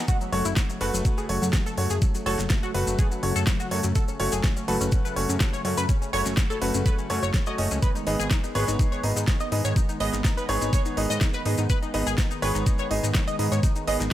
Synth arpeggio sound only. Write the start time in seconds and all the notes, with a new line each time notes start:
0.08 F#4
0.21 F#3
0.33 F#3
0.45 E4
0.57 F#3
0.69 F#3
0.81 F#4
0.94 F#3
1.05 F#3
1.18 G#4
1.29 F#3
1.42 F#3
1.54 F#3
1.66 A4
1.78 F#3
1.90 G#4
2.02 F#3
2.15 F#3
2.26 A4
2.39 F#3
2.50 F#3
2.63 F#4
2.74 F#3
2.87 F#3
2.99 G#4
3.12 F#3
3.23 F#3
3.36 A4
3.47 F#3
3.60 F#4
3.71 F#3
3.84 F#3
3.95 A4
4.08 C#4
4.20 C#4
4.32 G#4
4.44 C#4
4.57 C#4
4.68 A4
4.81 C#4
4.92 C#4
5.05 B4
5.16 C#4
5.29 C#4
5.41 C#4
5.53 C#5
5.65 C#4
5.77 B4
5.89 C#4
6.02 C#4
6.13 C#5
6.26 C#4
6.37 C#4
6.50 A4
6.62 C#4
6.74 C#4
6.86 B4
6.99 C#4
7.10 C#4
7.23 C#5
7.34 C#4
7.47 D#5
7.58 C#4
7.71 C#4
7.82 B4
7.95 D#4
8.07 D#4
8.19 G#4
8.31 D#4
8.44 D#4
8.55 B4
8.68 D#4
8.79 D#4
8.92 C#5
9.04 D#4
9.16 D#4
9.28 D#4
9.40 D#5
9.52 D#4
9.65 C#5
9.76 D#4
9.89 D#4
10.00 D#5
10.13 D#4
10.25 D#4
10.37 B4
10.49 D#4
10.62 D#4
10.73 C#5
10.86 D#4
10.97 D#4
11.10 D#5
11.21 D#4
11.34 B4
11.46 D#4
11.58 D#4
11.70 B4
11.82 D#4
11.94 D#4
12.07 G#4
12.18 D#4
12.31 D#4
12.42 B4
12.55 D#4
12.67 D#4
12.79 C#5
12.91 D#4
13.03 D#4
13.15 D#4
13.28 D#5
13.39 D#4
13.52 C#5
13.63 D#4
13.76 D#4
13.88 D#5
14.00 D#4